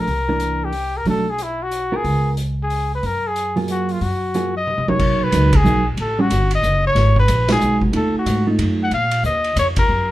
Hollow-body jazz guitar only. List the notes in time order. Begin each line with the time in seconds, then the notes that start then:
0.29 E3 A#3 D4
1.07 F#3 A3 D4
1.92 B3 F4 A#4
3.56 F#3 A#3 F4 G#4
4.35 F#3 A#3 F4 G#4
4.88 F#3 A#3 D#4
5.32 F#3 A#3 D#4
5.64 F#3 A#3 D#4
6.19 G3 C#4 F#4
7.49 G#3 D#4 F#4 B4
7.93 A3 D#4 F4
8.47 A3 D#4 F4